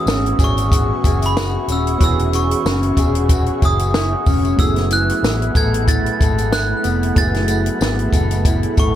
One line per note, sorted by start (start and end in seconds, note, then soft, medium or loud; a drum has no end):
0.00 2.01 E3 medium
0.00 1.95 B3 medium
0.00 1.96 C#4 medium
0.00 0.71 F#4 medium
0.00 1.97 F#4 medium
0.00 1.98 G#4 medium
0.00 4.55 G#4 medium
0.00 8.95 E5 medium
0.00 4.55 F#5 medium
0.00 4.55 C#6 medium
0.00 0.37 D#6 loud
0.06 0.32 G#1 loud
0.06 1.70 C#4 medium
0.06 snare loud
0.06 tambourine medium
0.26 closed hi-hat soft
0.39 0.91 G#1 medium
0.39 1.04 G#4 medium
0.39 kick medium
0.39 closed hi-hat medium
0.39 tambourine soft
0.44 1.26 C#6 medium
0.57 closed hi-hat medium
0.57 tambourine soft
0.72 1.36 F#4 medium
0.72 kick loud
0.72 closed hi-hat loud
0.72 tambourine soft
1.04 1.56 F#1 medium
1.04 2.98 G#4 medium
1.04 kick medium
1.04 closed hi-hat medium
1.04 tambourine soft
1.22 1.72 B5 loud
1.22 closed hi-hat medium
1.22 tambourine soft
1.37 2.35 F#4 medium
1.37 snare loud
1.37 tambourine medium
1.68 1.94 D#1 medium
1.68 2.66 C#4 medium
1.68 closed hi-hat medium
1.68 tambourine soft
1.72 2.03 E6 medium
1.87 closed hi-hat soft
1.98 2.52 E1 loud
1.98 4.53 B3 medium
1.98 4.54 C#4 medium
1.98 4.55 F#4 medium
1.98 kick loud
1.98 closed hi-hat medium
2.02 4.62 E3 medium
2.02 4.56 G#4 medium
2.02 2.35 E6 loud
2.02 tambourine soft
2.19 closed hi-hat soft
2.33 3.30 F#4 medium
2.33 3.67 C#6 medium
2.33 closed hi-hat medium
2.33 tambourine medium
2.51 closed hi-hat medium
2.65 2.91 F#1 loud
2.65 4.27 C#4 medium
2.65 snare loud
2.65 tambourine medium
2.83 closed hi-hat soft
2.97 3.49 E1 medium
2.97 3.62 G#4 medium
2.97 kick medium
2.97 closed hi-hat medium
2.97 tambourine soft
3.15 closed hi-hat medium
3.29 3.94 F#4 medium
3.29 kick loud
3.29 closed hi-hat loud
3.29 tambourine soft
3.46 closed hi-hat soft
3.62 4.14 F#1 medium
3.62 5.55 G#4 medium
3.62 4.24 D#6 medium
3.62 kick medium
3.62 closed hi-hat medium
3.62 tambourine soft
3.79 closed hi-hat medium
3.79 tambourine soft
3.94 4.13 E4 medium
3.94 snare loud
3.94 tambourine medium
4.13 4.66 F#4 medium
4.26 4.52 F1 medium
4.26 5.23 C#4 medium
4.26 kick medium
4.26 open hi-hat soft
4.26 tambourine soft
4.45 closed hi-hat soft
4.45 tambourine soft
4.56 5.10 F#1 medium
4.56 7.16 F#3 medium
4.56 7.11 A3 medium
4.56 8.95 A3 medium
4.56 7.12 B3 medium
4.56 7.13 E4 medium
4.56 8.95 F#5 medium
4.56 8.95 B5 medium
4.56 4.92 E6 loud
4.56 kick loud
4.56 closed hi-hat medium
4.56 tambourine soft
4.61 7.14 G#4 medium
4.76 snare soft
4.76 closed hi-hat soft
4.90 5.87 E4 medium
4.90 5.58 F#6 loud
4.90 closed hi-hat medium
4.90 tambourine medium
5.09 closed hi-hat medium
5.23 5.49 A1 medium
5.23 6.83 B3 medium
5.23 snare loud
5.23 tambourine medium
5.42 closed hi-hat soft
5.55 6.07 A1 medium
5.55 6.19 A4 medium
5.55 5.89 G#6 medium
5.55 kick medium
5.55 closed hi-hat medium
5.55 tambourine soft
5.74 closed hi-hat medium
5.87 6.51 E4 medium
5.87 6.54 A6 loud
5.87 kick medium
5.87 closed hi-hat loud
5.87 tambourine soft
6.06 closed hi-hat soft
6.20 6.72 G#1 medium
6.20 8.12 A4 medium
6.20 kick medium
6.20 closed hi-hat medium
6.20 tambourine soft
6.38 closed hi-hat medium
6.38 tambourine soft
6.51 7.48 E4 medium
6.51 7.19 F#6 loud
6.51 snare loud
6.51 tambourine medium
6.83 7.10 F1 medium
6.83 7.80 B3 medium
6.83 closed hi-hat medium
6.83 tambourine soft
7.03 closed hi-hat soft
7.15 7.68 F#1 loud
7.15 8.95 F#3 medium
7.15 8.95 A3 medium
7.15 8.95 B3 medium
7.15 8.95 E4 medium
7.15 8.83 A6 loud
7.15 kick loud
7.15 closed hi-hat medium
7.15 tambourine medium
7.19 8.95 G#4 medium
7.34 snare soft
7.34 closed hi-hat soft
7.48 8.46 E4 medium
7.48 closed hi-hat medium
7.48 tambourine medium
7.66 closed hi-hat medium
7.81 8.07 G#1 loud
7.81 8.95 B3 medium
7.81 snare loud
7.81 tambourine medium
7.99 closed hi-hat soft
8.12 8.64 F#1 medium
8.12 8.76 A4 medium
8.12 kick medium
8.12 closed hi-hat medium
8.12 tambourine soft
8.31 closed hi-hat medium
8.31 tambourine soft
8.45 8.95 E4 medium
8.45 kick loud
8.45 closed hi-hat loud
8.45 tambourine soft
8.63 closed hi-hat soft
8.77 8.95 G#1 medium
8.77 8.95 A4 medium
8.77 8.95 C#6 medium
8.77 kick medium
8.77 closed hi-hat medium
8.77 tambourine soft